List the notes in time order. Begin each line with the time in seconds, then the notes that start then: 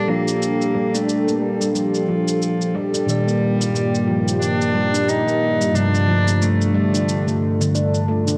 Already playing: A#2 F3 G3 D4 G4 A4
0.08 F3 A#3
0.28 shaker
0.42 shaker
0.61 shaker
0.75 G3
0.94 A3 D4, shaker
1.09 shaker
1.28 A#3, shaker
1.35 A3
1.41 G3
1.61 G3, shaker
1.75 F3 G3, shaker
1.94 shaker
2.08 F3
2.28 shaker
2.42 shaker
2.61 shaker
2.75 G3
2.94 D4, shaker
3.06 G2 A#2 D#3 G3 A#3 F4 G4, shaker
3.10 D5
3.27 A#3, shaker
3.60 G3, shaker
3.74 G3, shaker
3.95 shaker
4.07 F3
4.28 shaker
4.41 D4, shaker
4.61 shaker
4.75 G3
4.94 D4, shaker
5.08 D#4, shaker
5.27 A#3, shaker
5.61 G3, shaker
5.73 G2 C3 D3 F3 G3 A3 D4, shaker
5.95 shaker
6.08 F3
6.28 shaker
6.41 A3, shaker
6.61 shaker
6.74 G3
6.94 D4, shaker
7.09 shaker
7.27 A3, shaker
7.61 D3, shaker
7.75 D4, shaker
7.94 shaker
8.08 A3
8.28 D3, shaker